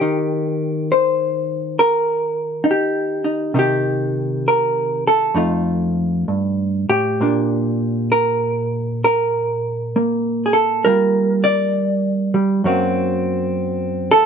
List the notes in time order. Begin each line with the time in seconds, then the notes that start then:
Already playing: G4
0.01 D#3 D#4
0.92 C5
1.79 A#4
2.64 D#4
2.71 G4
3.24 D#4
3.54 C3 D#3 D#4
3.59 G4
4.48 A#4
5.07 A4
5.34 F2 A3 D#4 F4
6.28 G2
6.89 A2 G4
7.21 A#2 A#3 D4
8.12 A#4
9.04 A#4
9.96 A#3
10.46 G#4
10.53 A4
10.85 G3 A#3 F4 A#4
11.44 D5
12.34 G3
12.64 F#2 F#3 A#3 C4 F#4
14.11 A4